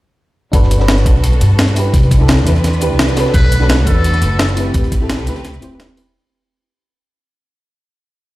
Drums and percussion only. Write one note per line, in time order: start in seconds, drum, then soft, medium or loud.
0.53 kick loud
0.53 closed hi-hat medium
0.63 snare soft
0.71 closed hi-hat loud
0.71 closed hi-hat medium
0.71 shaker medium
0.80 snare soft
0.88 snare loud
0.88 closed hi-hat medium
0.98 snare medium
0.98 shaker soft
1.06 kick loud
1.06 closed hi-hat loud
1.06 closed hi-hat medium
1.06 shaker medium
1.24 closed hi-hat loud
1.24 closed hi-hat medium
1.33 shaker soft
1.41 closed hi-hat loud
1.41 closed hi-hat medium
1.41 shaker medium
1.58 snare loud
1.58 closed hi-hat medium
1.68 shaker soft
1.76 closed hi-hat medium
1.76 open hi-hat medium
1.76 shaker medium
1.94 kick loud
1.94 closed hi-hat medium
2.03 closed hi-hat soft
2.11 kick loud
2.11 closed hi-hat loud
2.11 closed hi-hat medium
2.11 shaker medium
2.28 snare loud
2.28 closed hi-hat loud
2.28 closed hi-hat medium
2.38 shaker soft
2.47 closed hi-hat medium
2.47 shaker medium
2.56 closed hi-hat soft
2.64 snare soft
2.64 closed hi-hat medium
2.73 shaker soft
2.81 closed hi-hat medium
2.81 closed hi-hat loud
2.81 shaker medium
2.99 snare loud
2.99 closed hi-hat medium
3.08 snare soft
3.08 shaker soft
3.17 snare loud
3.17 closed hi-hat medium
3.17 open hi-hat medium
3.17 shaker medium
3.26 snare soft
3.34 kick loud
3.34 closed hi-hat loud
3.34 closed hi-hat medium
3.44 snare soft
3.52 closed hi-hat loud
3.52 closed hi-hat medium
3.52 shaker medium
3.62 snare medium
3.69 snare loud
3.69 closed hi-hat loud
3.69 closed hi-hat medium
3.78 snare medium
3.78 shaker soft
3.87 kick loud
3.87 closed hi-hat medium
3.87 closed hi-hat loud
3.87 shaker medium
4.04 closed hi-hat medium
4.14 shaker soft
4.22 closed hi-hat loud
4.22 closed hi-hat medium
4.22 shaker medium
4.39 snare loud
4.39 closed hi-hat medium
4.48 shaker soft
4.57 closed hi-hat medium
4.57 open hi-hat medium
4.57 shaker medium
4.74 kick loud
4.74 closed hi-hat medium
4.84 closed hi-hat soft
4.92 kick loud
4.92 closed hi-hat medium
4.92 shaker medium
5.10 snare loud
5.10 closed hi-hat medium
5.10 closed hi-hat loud
5.19 shaker soft
5.27 closed hi-hat medium
5.27 shaker medium
5.36 closed hi-hat soft
5.45 snare soft
5.45 closed hi-hat medium
5.54 shaker soft
5.62 closed hi-hat loud
5.62 closed hi-hat medium
5.62 shaker medium
5.80 snare loud
5.80 closed hi-hat medium
5.89 shaker soft
5.97 open hi-hat medium
5.97 shaker medium